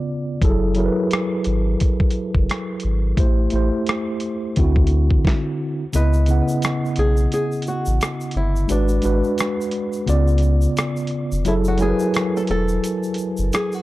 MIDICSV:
0, 0, Header, 1, 5, 480
1, 0, Start_track
1, 0, Key_signature, 4, "minor"
1, 0, Tempo, 689655
1, 291, Time_signature, 4, 2, 24, 8
1, 9619, End_track
2, 0, Start_track
2, 0, Title_t, "Nylon-string guitar"
2, 0, Program_c, 0, 24
2, 4144, Note_on_c, 0, 71, 99
2, 4830, Note_off_c, 0, 71, 0
2, 4866, Note_on_c, 0, 68, 91
2, 5082, Note_off_c, 0, 68, 0
2, 5106, Note_on_c, 0, 68, 96
2, 5343, Note_off_c, 0, 68, 0
2, 5346, Note_on_c, 0, 66, 86
2, 5822, Note_off_c, 0, 66, 0
2, 5825, Note_on_c, 0, 64, 79
2, 6065, Note_off_c, 0, 64, 0
2, 6066, Note_on_c, 0, 62, 75
2, 6991, Note_off_c, 0, 62, 0
2, 7989, Note_on_c, 0, 64, 91
2, 8024, Note_off_c, 0, 64, 0
2, 8130, Note_on_c, 0, 66, 86
2, 8222, Note_off_c, 0, 66, 0
2, 8228, Note_on_c, 0, 68, 99
2, 8575, Note_off_c, 0, 68, 0
2, 8609, Note_on_c, 0, 69, 101
2, 8644, Note_off_c, 0, 69, 0
2, 8705, Note_on_c, 0, 69, 111
2, 9421, Note_off_c, 0, 69, 0
2, 9423, Note_on_c, 0, 68, 96
2, 9564, Note_off_c, 0, 68, 0
2, 9564, Note_on_c, 0, 66, 82
2, 9619, Note_off_c, 0, 66, 0
2, 9619, End_track
3, 0, Start_track
3, 0, Title_t, "Tine electric piano"
3, 0, Program_c, 1, 4
3, 0, Control_c, 1, 64, 127
3, 0, Note_on_c, 1, 49, 83
3, 0, Note_on_c, 1, 59, 73
3, 0, Note_on_c, 1, 65, 68
3, 0, Note_on_c, 1, 74, 90
3, 212, Note_off_c, 1, 49, 0
3, 215, Note_off_c, 1, 59, 0
3, 219, Note_off_c, 1, 65, 0
3, 222, Note_off_c, 1, 74, 0
3, 289, Note_on_c, 1, 54, 85
3, 297, Note_on_c, 1, 64, 78
3, 301, Control_c, 1, 64, 0
3, 304, Note_on_c, 1, 68, 82
3, 310, Note_on_c, 1, 69, 95
3, 405, Control_c, 1, 64, 127
3, 510, Note_off_c, 1, 54, 0
3, 515, Note_off_c, 1, 64, 0
3, 518, Note_off_c, 1, 68, 0
3, 521, Note_off_c, 1, 69, 0
3, 529, Note_on_c, 1, 54, 79
3, 534, Note_on_c, 1, 64, 72
3, 542, Note_on_c, 1, 68, 66
3, 549, Note_on_c, 1, 70, 69
3, 594, Note_off_c, 1, 70, 0
3, 596, Note_on_c, 1, 71, 86
3, 1412, Note_off_c, 1, 54, 0
3, 1415, Note_off_c, 1, 64, 0
3, 1418, Note_off_c, 1, 68, 0
3, 1446, Note_off_c, 1, 71, 0
3, 2205, Note_on_c, 1, 57, 76
3, 2212, Note_on_c, 1, 64, 65
3, 2220, Note_on_c, 1, 67, 63
3, 2221, Control_c, 1, 64, 0
3, 2226, Note_on_c, 1, 72, 80
3, 2340, Control_c, 1, 64, 127
3, 2429, Note_off_c, 1, 57, 0
3, 2432, Note_off_c, 1, 64, 0
3, 2436, Note_off_c, 1, 67, 0
3, 2439, Note_off_c, 1, 72, 0
3, 2453, Note_on_c, 1, 57, 65
3, 2459, Note_on_c, 1, 64, 64
3, 2467, Note_on_c, 1, 67, 57
3, 2475, Note_on_c, 1, 72, 71
3, 3172, Note_off_c, 1, 57, 0
3, 3175, Note_off_c, 1, 64, 0
3, 3177, Note_on_c, 1, 50, 89
3, 3179, Note_off_c, 1, 67, 0
3, 3179, Control_c, 1, 64, 0
3, 3183, Note_off_c, 1, 72, 0
3, 3183, Note_on_c, 1, 60, 82
3, 3192, Note_on_c, 1, 64, 76
3, 3199, Note_on_c, 1, 66, 89
3, 3314, Control_c, 1, 64, 127
3, 3661, Control_c, 1, 64, 0
3, 4056, Note_off_c, 1, 50, 0
3, 4059, Note_off_c, 1, 60, 0
3, 4064, Note_off_c, 1, 64, 0
3, 4067, Note_off_c, 1, 66, 0
3, 4125, Note_on_c, 1, 49, 70
3, 4133, Note_on_c, 1, 59, 61
3, 4140, Note_on_c, 1, 64, 68
3, 4147, Note_on_c, 1, 75, 86
3, 4245, Control_c, 1, 64, 127
3, 4349, Note_off_c, 1, 49, 0
3, 4353, Note_off_c, 1, 59, 0
3, 4356, Note_off_c, 1, 64, 0
3, 4359, Note_off_c, 1, 75, 0
3, 4370, Note_on_c, 1, 49, 70
3, 4376, Note_on_c, 1, 59, 53
3, 4383, Note_on_c, 1, 64, 58
3, 4390, Note_on_c, 1, 78, 68
3, 5253, Note_off_c, 1, 49, 0
3, 5256, Note_off_c, 1, 59, 0
3, 5259, Note_off_c, 1, 64, 0
3, 5263, Note_off_c, 1, 78, 0
3, 6040, Note_on_c, 1, 56, 74
3, 6047, Note_on_c, 1, 62, 72
3, 6056, Note_on_c, 1, 66, 67
3, 6059, Control_c, 1, 64, 0
3, 6062, Note_on_c, 1, 71, 77
3, 6181, Control_c, 1, 64, 127
3, 6266, Note_off_c, 1, 56, 0
3, 6270, Note_off_c, 1, 62, 0
3, 6274, Note_off_c, 1, 66, 0
3, 6277, Note_off_c, 1, 71, 0
3, 6282, Note_on_c, 1, 56, 62
3, 6289, Note_on_c, 1, 62, 62
3, 6295, Note_on_c, 1, 66, 64
3, 6302, Note_on_c, 1, 71, 82
3, 7003, Note_on_c, 1, 49, 92
3, 7007, Note_off_c, 1, 56, 0
3, 7010, Note_off_c, 1, 62, 0
3, 7012, Note_on_c, 1, 59, 81
3, 7013, Note_off_c, 1, 66, 0
3, 7017, Note_off_c, 1, 71, 0
3, 7019, Note_on_c, 1, 65, 75
3, 7021, Control_c, 1, 64, 0
3, 7026, Note_on_c, 1, 74, 97
3, 7125, Control_c, 1, 64, 127
3, 7889, Note_off_c, 1, 49, 0
3, 7894, Note_off_c, 1, 59, 0
3, 7897, Note_off_c, 1, 65, 0
3, 7901, Note_off_c, 1, 74, 0
3, 7967, Note_on_c, 1, 54, 92
3, 7974, Note_on_c, 1, 64, 80
3, 7980, Control_c, 1, 64, 0
3, 7982, Note_on_c, 1, 68, 79
3, 7988, Note_on_c, 1, 69, 99
3, 8100, Control_c, 1, 64, 127
3, 8189, Note_off_c, 1, 54, 0
3, 8193, Note_off_c, 1, 64, 0
3, 8197, Note_off_c, 1, 68, 0
3, 8200, Note_off_c, 1, 69, 0
3, 8204, Note_on_c, 1, 54, 81
3, 8212, Note_on_c, 1, 64, 77
3, 8219, Note_on_c, 1, 80, 73
3, 8226, Note_on_c, 1, 70, 70
3, 8271, Note_on_c, 1, 71, 90
3, 8272, Note_off_c, 1, 70, 0
3, 9090, Note_off_c, 1, 54, 0
3, 9094, Note_off_c, 1, 64, 0
3, 9097, Note_off_c, 1, 80, 0
3, 9123, Note_off_c, 1, 71, 0
3, 9619, End_track
4, 0, Start_track
4, 0, Title_t, "Sub bass"
4, 0, Program_c, 2, 38
4, 293, Note_on_c, 2, 30, 103
4, 620, Note_off_c, 2, 30, 0
4, 1019, Note_on_c, 2, 32, 89
4, 1222, Note_off_c, 2, 32, 0
4, 1636, Note_on_c, 2, 30, 91
4, 1719, Note_off_c, 2, 30, 0
4, 1978, Note_on_c, 2, 32, 84
4, 2181, Note_off_c, 2, 32, 0
4, 2211, Note_on_c, 2, 33, 104
4, 2417, Note_off_c, 2, 33, 0
4, 2456, Note_on_c, 2, 33, 94
4, 2576, Note_off_c, 2, 33, 0
4, 3185, Note_on_c, 2, 38, 97
4, 3592, Note_off_c, 2, 38, 0
4, 4138, Note_on_c, 2, 37, 113
4, 4463, Note_off_c, 2, 37, 0
4, 4858, Note_on_c, 2, 35, 102
4, 5061, Note_off_c, 2, 35, 0
4, 5479, Note_on_c, 2, 33, 96
4, 5561, Note_off_c, 2, 33, 0
4, 5817, Note_on_c, 2, 31, 88
4, 6021, Note_off_c, 2, 31, 0
4, 6058, Note_on_c, 2, 32, 100
4, 6261, Note_off_c, 2, 32, 0
4, 6298, Note_on_c, 2, 32, 86
4, 6417, Note_off_c, 2, 32, 0
4, 7017, Note_on_c, 2, 37, 99
4, 7427, Note_off_c, 2, 37, 0
4, 7879, Note_on_c, 2, 29, 75
4, 7961, Note_off_c, 2, 29, 0
4, 7976, Note_on_c, 2, 30, 104
4, 8302, Note_off_c, 2, 30, 0
4, 8698, Note_on_c, 2, 28, 96
4, 8901, Note_off_c, 2, 28, 0
4, 9317, Note_on_c, 2, 30, 79
4, 9400, Note_off_c, 2, 30, 0
4, 9619, End_track
5, 0, Start_track
5, 0, Title_t, "Drums"
5, 289, Note_on_c, 9, 36, 104
5, 292, Note_on_c, 9, 42, 70
5, 359, Note_off_c, 9, 36, 0
5, 361, Note_off_c, 9, 42, 0
5, 519, Note_on_c, 9, 42, 53
5, 589, Note_off_c, 9, 42, 0
5, 771, Note_on_c, 9, 42, 67
5, 789, Note_on_c, 9, 37, 102
5, 840, Note_off_c, 9, 42, 0
5, 859, Note_off_c, 9, 37, 0
5, 1005, Note_on_c, 9, 42, 64
5, 1074, Note_off_c, 9, 42, 0
5, 1254, Note_on_c, 9, 42, 76
5, 1262, Note_on_c, 9, 36, 94
5, 1324, Note_off_c, 9, 42, 0
5, 1332, Note_off_c, 9, 36, 0
5, 1392, Note_on_c, 9, 36, 90
5, 1461, Note_off_c, 9, 36, 0
5, 1465, Note_on_c, 9, 42, 62
5, 1535, Note_off_c, 9, 42, 0
5, 1633, Note_on_c, 9, 36, 82
5, 1702, Note_off_c, 9, 36, 0
5, 1736, Note_on_c, 9, 42, 65
5, 1748, Note_on_c, 9, 37, 92
5, 1806, Note_off_c, 9, 42, 0
5, 1817, Note_off_c, 9, 37, 0
5, 1947, Note_on_c, 9, 42, 55
5, 2017, Note_off_c, 9, 42, 0
5, 2208, Note_on_c, 9, 36, 105
5, 2210, Note_on_c, 9, 42, 76
5, 2278, Note_off_c, 9, 36, 0
5, 2280, Note_off_c, 9, 42, 0
5, 2437, Note_on_c, 9, 42, 54
5, 2507, Note_off_c, 9, 42, 0
5, 2690, Note_on_c, 9, 42, 67
5, 2709, Note_on_c, 9, 37, 96
5, 2760, Note_off_c, 9, 42, 0
5, 2778, Note_off_c, 9, 37, 0
5, 2923, Note_on_c, 9, 42, 60
5, 2993, Note_off_c, 9, 42, 0
5, 3174, Note_on_c, 9, 42, 73
5, 3182, Note_on_c, 9, 36, 88
5, 3244, Note_off_c, 9, 42, 0
5, 3252, Note_off_c, 9, 36, 0
5, 3312, Note_on_c, 9, 36, 93
5, 3382, Note_off_c, 9, 36, 0
5, 3388, Note_on_c, 9, 42, 59
5, 3458, Note_off_c, 9, 42, 0
5, 3553, Note_on_c, 9, 36, 77
5, 3623, Note_off_c, 9, 36, 0
5, 3651, Note_on_c, 9, 36, 90
5, 3669, Note_on_c, 9, 38, 76
5, 3721, Note_off_c, 9, 36, 0
5, 3738, Note_off_c, 9, 38, 0
5, 4129, Note_on_c, 9, 42, 75
5, 4132, Note_on_c, 9, 82, 70
5, 4199, Note_off_c, 9, 42, 0
5, 4201, Note_off_c, 9, 82, 0
5, 4268, Note_on_c, 9, 82, 55
5, 4338, Note_off_c, 9, 82, 0
5, 4358, Note_on_c, 9, 42, 56
5, 4371, Note_on_c, 9, 82, 46
5, 4428, Note_off_c, 9, 42, 0
5, 4440, Note_off_c, 9, 82, 0
5, 4512, Note_on_c, 9, 82, 48
5, 4582, Note_off_c, 9, 82, 0
5, 4608, Note_on_c, 9, 42, 73
5, 4615, Note_on_c, 9, 82, 69
5, 4627, Note_on_c, 9, 37, 111
5, 4678, Note_off_c, 9, 42, 0
5, 4684, Note_off_c, 9, 82, 0
5, 4696, Note_off_c, 9, 37, 0
5, 4770, Note_on_c, 9, 82, 46
5, 4839, Note_off_c, 9, 82, 0
5, 4842, Note_on_c, 9, 42, 70
5, 4912, Note_off_c, 9, 42, 0
5, 4990, Note_on_c, 9, 82, 43
5, 5060, Note_off_c, 9, 82, 0
5, 5093, Note_on_c, 9, 42, 74
5, 5101, Note_on_c, 9, 82, 61
5, 5163, Note_off_c, 9, 42, 0
5, 5171, Note_off_c, 9, 82, 0
5, 5233, Note_on_c, 9, 82, 41
5, 5302, Note_off_c, 9, 82, 0
5, 5304, Note_on_c, 9, 42, 59
5, 5337, Note_on_c, 9, 82, 43
5, 5374, Note_off_c, 9, 42, 0
5, 5407, Note_off_c, 9, 82, 0
5, 5469, Note_on_c, 9, 82, 54
5, 5538, Note_off_c, 9, 82, 0
5, 5575, Note_on_c, 9, 42, 68
5, 5576, Note_on_c, 9, 82, 57
5, 5587, Note_on_c, 9, 37, 92
5, 5645, Note_off_c, 9, 42, 0
5, 5646, Note_off_c, 9, 82, 0
5, 5656, Note_off_c, 9, 37, 0
5, 5711, Note_on_c, 9, 82, 42
5, 5781, Note_off_c, 9, 82, 0
5, 5786, Note_on_c, 9, 42, 60
5, 5855, Note_off_c, 9, 42, 0
5, 5958, Note_on_c, 9, 82, 48
5, 6027, Note_off_c, 9, 82, 0
5, 6048, Note_on_c, 9, 42, 72
5, 6049, Note_on_c, 9, 82, 73
5, 6117, Note_off_c, 9, 42, 0
5, 6119, Note_off_c, 9, 82, 0
5, 6183, Note_on_c, 9, 82, 55
5, 6253, Note_off_c, 9, 82, 0
5, 6277, Note_on_c, 9, 42, 57
5, 6286, Note_on_c, 9, 82, 44
5, 6346, Note_off_c, 9, 42, 0
5, 6356, Note_off_c, 9, 82, 0
5, 6429, Note_on_c, 9, 82, 46
5, 6499, Note_off_c, 9, 82, 0
5, 6527, Note_on_c, 9, 42, 68
5, 6533, Note_on_c, 9, 82, 70
5, 6546, Note_on_c, 9, 37, 100
5, 6597, Note_off_c, 9, 42, 0
5, 6603, Note_off_c, 9, 82, 0
5, 6615, Note_off_c, 9, 37, 0
5, 6689, Note_on_c, 9, 82, 51
5, 6758, Note_off_c, 9, 82, 0
5, 6761, Note_on_c, 9, 42, 69
5, 6831, Note_off_c, 9, 42, 0
5, 6909, Note_on_c, 9, 82, 47
5, 6979, Note_off_c, 9, 82, 0
5, 7012, Note_on_c, 9, 42, 76
5, 7021, Note_on_c, 9, 82, 60
5, 7081, Note_off_c, 9, 42, 0
5, 7091, Note_off_c, 9, 82, 0
5, 7152, Note_on_c, 9, 82, 42
5, 7222, Note_off_c, 9, 82, 0
5, 7225, Note_on_c, 9, 42, 62
5, 7255, Note_on_c, 9, 82, 42
5, 7294, Note_off_c, 9, 42, 0
5, 7324, Note_off_c, 9, 82, 0
5, 7389, Note_on_c, 9, 82, 50
5, 7459, Note_off_c, 9, 82, 0
5, 7496, Note_on_c, 9, 42, 68
5, 7496, Note_on_c, 9, 82, 63
5, 7507, Note_on_c, 9, 37, 97
5, 7565, Note_off_c, 9, 42, 0
5, 7566, Note_off_c, 9, 82, 0
5, 7576, Note_off_c, 9, 37, 0
5, 7632, Note_on_c, 9, 82, 44
5, 7701, Note_off_c, 9, 82, 0
5, 7706, Note_on_c, 9, 42, 58
5, 7776, Note_off_c, 9, 42, 0
5, 7878, Note_on_c, 9, 82, 48
5, 7948, Note_off_c, 9, 82, 0
5, 7968, Note_on_c, 9, 42, 71
5, 7969, Note_on_c, 9, 82, 71
5, 8038, Note_off_c, 9, 42, 0
5, 8039, Note_off_c, 9, 82, 0
5, 8104, Note_on_c, 9, 82, 57
5, 8174, Note_off_c, 9, 82, 0
5, 8196, Note_on_c, 9, 42, 59
5, 8207, Note_on_c, 9, 82, 48
5, 8266, Note_off_c, 9, 42, 0
5, 8277, Note_off_c, 9, 82, 0
5, 8348, Note_on_c, 9, 82, 48
5, 8417, Note_off_c, 9, 82, 0
5, 8448, Note_on_c, 9, 42, 69
5, 8451, Note_on_c, 9, 82, 74
5, 8467, Note_on_c, 9, 37, 109
5, 8518, Note_off_c, 9, 42, 0
5, 8521, Note_off_c, 9, 82, 0
5, 8536, Note_off_c, 9, 37, 0
5, 8608, Note_on_c, 9, 82, 51
5, 8677, Note_off_c, 9, 82, 0
5, 8681, Note_on_c, 9, 42, 67
5, 8751, Note_off_c, 9, 42, 0
5, 8829, Note_on_c, 9, 82, 45
5, 8898, Note_off_c, 9, 82, 0
5, 8934, Note_on_c, 9, 42, 75
5, 8939, Note_on_c, 9, 82, 62
5, 9004, Note_off_c, 9, 42, 0
5, 9009, Note_off_c, 9, 82, 0
5, 9070, Note_on_c, 9, 82, 45
5, 9140, Note_off_c, 9, 82, 0
5, 9147, Note_on_c, 9, 42, 59
5, 9174, Note_on_c, 9, 82, 45
5, 9216, Note_off_c, 9, 42, 0
5, 9243, Note_off_c, 9, 82, 0
5, 9307, Note_on_c, 9, 82, 51
5, 9376, Note_off_c, 9, 82, 0
5, 9415, Note_on_c, 9, 82, 61
5, 9418, Note_on_c, 9, 42, 69
5, 9429, Note_on_c, 9, 37, 95
5, 9485, Note_off_c, 9, 82, 0
5, 9487, Note_off_c, 9, 42, 0
5, 9498, Note_off_c, 9, 37, 0
5, 9550, Note_on_c, 9, 82, 47
5, 9619, Note_off_c, 9, 82, 0
5, 9619, End_track
0, 0, End_of_file